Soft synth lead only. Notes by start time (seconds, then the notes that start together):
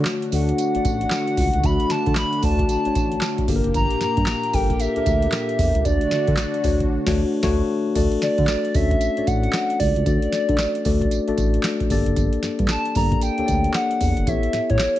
0.33 F#5
1.65 B5
1.91 A5
2.18 B5
2.44 A5
2.70 A5
3.75 A#5
4.01 A#5
4.54 G5
4.80 E5
5.85 D5
8.22 D5
8.75 E5
9.27 F#5
9.80 D5
12.70 A5
12.97 A#5
13.23 G5
13.75 F#5
14.28 E5
14.70 C#5